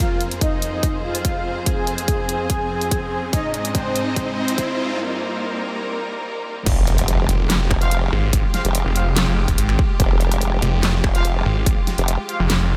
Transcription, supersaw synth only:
0, 0, Header, 1, 2, 480
1, 0, Start_track
1, 0, Time_signature, 4, 2, 24, 8
1, 0, Key_signature, -4, "minor"
1, 0, Tempo, 416667
1, 14709, End_track
2, 0, Start_track
2, 0, Title_t, "Supersaw synth"
2, 0, Program_c, 0, 81
2, 0, Note_on_c, 0, 65, 76
2, 0, Note_on_c, 0, 77, 99
2, 254, Note_off_c, 0, 65, 0
2, 254, Note_off_c, 0, 77, 0
2, 476, Note_on_c, 0, 63, 79
2, 477, Note_on_c, 0, 75, 98
2, 1105, Note_off_c, 0, 63, 0
2, 1105, Note_off_c, 0, 75, 0
2, 1196, Note_on_c, 0, 65, 80
2, 1196, Note_on_c, 0, 77, 98
2, 1825, Note_off_c, 0, 65, 0
2, 1825, Note_off_c, 0, 77, 0
2, 1916, Note_on_c, 0, 80, 105
2, 1917, Note_on_c, 0, 68, 86
2, 3745, Note_off_c, 0, 68, 0
2, 3745, Note_off_c, 0, 80, 0
2, 3837, Note_on_c, 0, 63, 79
2, 3837, Note_on_c, 0, 75, 104
2, 4094, Note_off_c, 0, 63, 0
2, 4094, Note_off_c, 0, 75, 0
2, 4317, Note_on_c, 0, 60, 81
2, 4317, Note_on_c, 0, 72, 98
2, 4945, Note_off_c, 0, 60, 0
2, 4945, Note_off_c, 0, 72, 0
2, 5037, Note_on_c, 0, 60, 82
2, 5037, Note_on_c, 0, 72, 100
2, 5665, Note_off_c, 0, 60, 0
2, 5665, Note_off_c, 0, 72, 0
2, 14709, End_track
0, 0, End_of_file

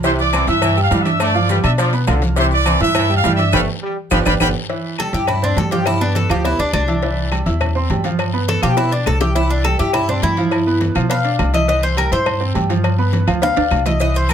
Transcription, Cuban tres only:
0, 0, Header, 1, 2, 480
1, 0, Start_track
1, 0, Key_signature, 0, "major"
1, 0, Tempo, 290839
1, 68, Time_signature, 4, 2, 24, 8
1, 23660, End_track
2, 0, Start_track
2, 0, Title_t, "Cuban tres"
2, 0, Program_c, 0, 25
2, 8248, Note_on_c, 0, 69, 96
2, 8474, Note_off_c, 0, 69, 0
2, 8488, Note_on_c, 0, 67, 80
2, 8714, Note_off_c, 0, 67, 0
2, 8721, Note_on_c, 0, 64, 76
2, 8951, Note_off_c, 0, 64, 0
2, 8973, Note_on_c, 0, 62, 91
2, 9197, Note_off_c, 0, 62, 0
2, 9208, Note_on_c, 0, 69, 91
2, 9434, Note_off_c, 0, 69, 0
2, 9443, Note_on_c, 0, 67, 84
2, 9672, Note_off_c, 0, 67, 0
2, 9684, Note_on_c, 0, 64, 94
2, 9913, Note_off_c, 0, 64, 0
2, 9923, Note_on_c, 0, 62, 86
2, 10152, Note_off_c, 0, 62, 0
2, 10168, Note_on_c, 0, 69, 87
2, 10395, Note_off_c, 0, 69, 0
2, 10413, Note_on_c, 0, 67, 82
2, 10638, Note_off_c, 0, 67, 0
2, 10648, Note_on_c, 0, 64, 92
2, 10875, Note_off_c, 0, 64, 0
2, 10887, Note_on_c, 0, 62, 86
2, 11095, Note_off_c, 0, 62, 0
2, 11115, Note_on_c, 0, 62, 97
2, 12048, Note_off_c, 0, 62, 0
2, 14005, Note_on_c, 0, 69, 119
2, 14235, Note_off_c, 0, 69, 0
2, 14246, Note_on_c, 0, 67, 90
2, 14475, Note_off_c, 0, 67, 0
2, 14482, Note_on_c, 0, 64, 90
2, 14713, Note_off_c, 0, 64, 0
2, 14726, Note_on_c, 0, 62, 79
2, 14955, Note_off_c, 0, 62, 0
2, 14969, Note_on_c, 0, 69, 97
2, 15187, Note_off_c, 0, 69, 0
2, 15194, Note_on_c, 0, 67, 88
2, 15429, Note_off_c, 0, 67, 0
2, 15442, Note_on_c, 0, 64, 88
2, 15673, Note_off_c, 0, 64, 0
2, 15685, Note_on_c, 0, 62, 82
2, 15915, Note_off_c, 0, 62, 0
2, 15919, Note_on_c, 0, 69, 99
2, 16151, Note_off_c, 0, 69, 0
2, 16163, Note_on_c, 0, 67, 89
2, 16394, Note_off_c, 0, 67, 0
2, 16401, Note_on_c, 0, 64, 93
2, 16633, Note_off_c, 0, 64, 0
2, 16649, Note_on_c, 0, 62, 79
2, 16876, Note_off_c, 0, 62, 0
2, 16889, Note_on_c, 0, 64, 101
2, 17815, Note_off_c, 0, 64, 0
2, 18332, Note_on_c, 0, 77, 107
2, 19023, Note_off_c, 0, 77, 0
2, 19051, Note_on_c, 0, 75, 84
2, 19272, Note_off_c, 0, 75, 0
2, 19292, Note_on_c, 0, 75, 92
2, 19517, Note_off_c, 0, 75, 0
2, 19528, Note_on_c, 0, 72, 94
2, 19755, Note_off_c, 0, 72, 0
2, 19774, Note_on_c, 0, 70, 96
2, 19998, Note_off_c, 0, 70, 0
2, 20012, Note_on_c, 0, 72, 93
2, 20469, Note_off_c, 0, 72, 0
2, 22165, Note_on_c, 0, 77, 115
2, 22856, Note_off_c, 0, 77, 0
2, 22879, Note_on_c, 0, 75, 86
2, 23107, Note_off_c, 0, 75, 0
2, 23124, Note_on_c, 0, 75, 89
2, 23350, Note_off_c, 0, 75, 0
2, 23373, Note_on_c, 0, 72, 90
2, 23594, Note_off_c, 0, 72, 0
2, 23610, Note_on_c, 0, 70, 86
2, 23660, Note_off_c, 0, 70, 0
2, 23660, End_track
0, 0, End_of_file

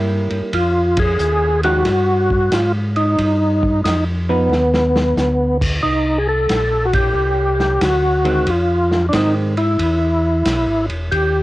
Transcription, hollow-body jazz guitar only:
0, 0, Header, 1, 2, 480
1, 0, Start_track
1, 0, Tempo, 661521
1, 393, Time_signature, 4, 2, 24, 8
1, 8292, End_track
2, 0, Start_track
2, 0, Title_t, "Hollow-body jazz guitar"
2, 0, Program_c, 0, 26
2, 0, Note_on_c, 0, 55, 59
2, 0, Note_on_c, 0, 58, 58
2, 0, Note_on_c, 0, 64, 60
2, 391, Note_off_c, 0, 55, 0
2, 394, Note_off_c, 0, 58, 0
2, 396, Note_off_c, 0, 64, 0
2, 1194, Note_on_c, 0, 53, 53
2, 1194, Note_on_c, 0, 56, 57
2, 1197, Note_on_c, 0, 63, 60
2, 1199, Note_on_c, 0, 67, 61
2, 1338, Note_off_c, 0, 53, 0
2, 1338, Note_off_c, 0, 56, 0
2, 1339, Note_off_c, 0, 63, 0
2, 1341, Note_off_c, 0, 67, 0
2, 3115, Note_on_c, 0, 53, 51
2, 3119, Note_on_c, 0, 59, 56
2, 3123, Note_on_c, 0, 63, 58
2, 3259, Note_off_c, 0, 53, 0
2, 3261, Note_off_c, 0, 59, 0
2, 3263, Note_off_c, 0, 63, 0
2, 5985, Note_on_c, 0, 51, 70
2, 5990, Note_on_c, 0, 56, 66
2, 5993, Note_on_c, 0, 60, 69
2, 6132, Note_off_c, 0, 51, 0
2, 6135, Note_off_c, 0, 56, 0
2, 6137, Note_off_c, 0, 60, 0
2, 6626, Note_on_c, 0, 51, 67
2, 6630, Note_on_c, 0, 56, 58
2, 6634, Note_on_c, 0, 60, 63
2, 6916, Note_off_c, 0, 51, 0
2, 6918, Note_off_c, 0, 56, 0
2, 6920, Note_off_c, 0, 60, 0
2, 8292, End_track
0, 0, End_of_file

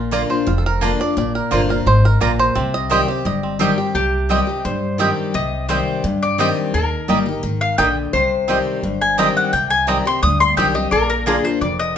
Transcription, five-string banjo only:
0, 0, Header, 1, 2, 480
1, 0, Start_track
1, 0, Key_signature, -3, "minor"
1, 0, Tempo, 348230
1, 1613, Time_signature, 4, 2, 24, 8
1, 16512, End_track
2, 0, Start_track
2, 0, Title_t, "Five-string banjo"
2, 0, Program_c, 0, 105
2, 0, Note_on_c, 0, 65, 58
2, 0, Note_on_c, 0, 70, 82
2, 144, Note_off_c, 0, 70, 0
2, 175, Note_on_c, 0, 70, 62
2, 415, Note_on_c, 0, 72, 65
2, 648, Note_off_c, 0, 65, 0
2, 653, Note_on_c, 0, 65, 67
2, 795, Note_off_c, 0, 70, 0
2, 801, Note_on_c, 0, 69, 60
2, 899, Note_off_c, 0, 69, 0
2, 913, Note_on_c, 0, 70, 106
2, 1084, Note_off_c, 0, 72, 0
2, 1129, Note_on_c, 0, 62, 77
2, 1329, Note_off_c, 0, 65, 0
2, 1383, Note_off_c, 0, 70, 0
2, 1389, Note_on_c, 0, 74, 98
2, 1611, Note_off_c, 0, 74, 0
2, 1627, Note_on_c, 0, 74, 90
2, 1806, Note_off_c, 0, 62, 0
2, 1848, Note_off_c, 0, 74, 0
2, 1863, Note_on_c, 0, 70, 83
2, 2090, Note_on_c, 0, 72, 64
2, 2306, Note_off_c, 0, 70, 0
2, 2347, Note_on_c, 0, 70, 85
2, 2561, Note_off_c, 0, 72, 0
2, 2577, Note_on_c, 0, 72, 104
2, 2583, Note_off_c, 0, 70, 0
2, 2826, Note_off_c, 0, 72, 0
2, 2828, Note_on_c, 0, 70, 103
2, 3034, Note_off_c, 0, 70, 0
2, 3050, Note_on_c, 0, 70, 59
2, 3300, Note_on_c, 0, 72, 111
2, 3521, Note_on_c, 0, 60, 80
2, 3530, Note_off_c, 0, 70, 0
2, 3779, Note_on_c, 0, 75, 112
2, 3791, Note_off_c, 0, 72, 0
2, 4011, Note_on_c, 0, 72, 66
2, 4201, Note_off_c, 0, 60, 0
2, 4244, Note_off_c, 0, 75, 0
2, 4249, Note_on_c, 0, 67, 67
2, 4498, Note_on_c, 0, 75, 96
2, 4686, Note_off_c, 0, 72, 0
2, 4731, Note_on_c, 0, 60, 49
2, 4919, Note_off_c, 0, 67, 0
2, 4940, Note_off_c, 0, 75, 0
2, 4967, Note_on_c, 0, 67, 53
2, 5193, Note_off_c, 0, 67, 0
2, 5210, Note_on_c, 0, 67, 65
2, 5400, Note_off_c, 0, 60, 0
2, 5446, Note_off_c, 0, 67, 0
2, 5933, Note_on_c, 0, 60, 62
2, 5938, Note_on_c, 0, 67, 65
2, 5966, Note_off_c, 0, 67, 0
2, 6038, Note_off_c, 0, 60, 0
2, 6897, Note_on_c, 0, 60, 63
2, 6903, Note_on_c, 0, 67, 57
2, 6931, Note_off_c, 0, 67, 0
2, 7001, Note_off_c, 0, 60, 0
2, 7860, Note_on_c, 0, 60, 69
2, 7866, Note_on_c, 0, 67, 71
2, 7894, Note_off_c, 0, 67, 0
2, 7963, Note_off_c, 0, 60, 0
2, 8820, Note_on_c, 0, 60, 62
2, 8826, Note_on_c, 0, 67, 60
2, 8853, Note_off_c, 0, 67, 0
2, 8924, Note_off_c, 0, 60, 0
2, 9780, Note_on_c, 0, 63, 67
2, 9788, Note_on_c, 0, 67, 69
2, 9816, Note_off_c, 0, 67, 0
2, 9884, Note_off_c, 0, 63, 0
2, 10741, Note_on_c, 0, 63, 60
2, 10749, Note_on_c, 0, 67, 69
2, 10777, Note_off_c, 0, 67, 0
2, 10846, Note_off_c, 0, 63, 0
2, 11702, Note_on_c, 0, 60, 64
2, 11713, Note_on_c, 0, 67, 67
2, 11741, Note_off_c, 0, 67, 0
2, 11807, Note_off_c, 0, 60, 0
2, 12669, Note_on_c, 0, 60, 65
2, 12678, Note_on_c, 0, 67, 61
2, 12706, Note_off_c, 0, 67, 0
2, 12770, Note_off_c, 0, 60, 0
2, 13620, Note_on_c, 0, 60, 63
2, 13631, Note_on_c, 0, 67, 64
2, 13658, Note_off_c, 0, 67, 0
2, 13726, Note_off_c, 0, 60, 0
2, 14582, Note_on_c, 0, 60, 60
2, 14590, Note_on_c, 0, 67, 59
2, 14617, Note_off_c, 0, 67, 0
2, 14686, Note_off_c, 0, 60, 0
2, 15541, Note_on_c, 0, 62, 66
2, 15548, Note_on_c, 0, 65, 72
2, 15551, Note_on_c, 0, 70, 61
2, 15646, Note_off_c, 0, 62, 0
2, 15648, Note_off_c, 0, 65, 0
2, 15650, Note_off_c, 0, 70, 0
2, 16512, End_track
0, 0, End_of_file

